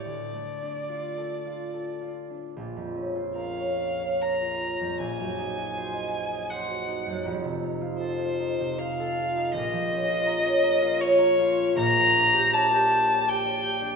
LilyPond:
<<
  \new Staff \with { instrumentName = "Violin" } { \time 3/4 \key d \minor \tempo 4 = 79 d''2~ d''8 r8 | \key bes \minor r4 f''4 bes''4 | aes''2 ges''4 | r4 c''4 f''4 |
ees''2 des''4 | \key g \dorian bes''4 a''4 g''4 | }
  \new Staff \with { instrumentName = "Harp" } { \time 3/4 \key d \minor \tuplet 3/2 { <d, a>8 a8 d'8 f'8 a'8 f'8 a'8 f'8 d'8 } | \key bes \minor bes,,16 f,16 des'16 f'16 bes'16 des''16 f''16 des''16 bes'16 f'16 des'16 f,16 | bes,,16 ges,16 ees'16 ges'16 c''16 ees''16 ges''16 ees''16 c''16 ges'16 ees'16 ges,16 | <f,, f,>16 c16 ees'16 f'16 a'16 f'16 ees'16 c16 f'16 a'16 f'16 ees'16 |
<bes,, bes,>16 f16 des'16 f'16 bes'16 des''16 bes'16 f'16 des''16 bes'16 f'16 des'16 | \key g \dorian <bes,, bes,>16 bes16 d'16 g'16 d''16 g'16 g''16 d''16 g'16 d''16 g'16 d'16 | }
>>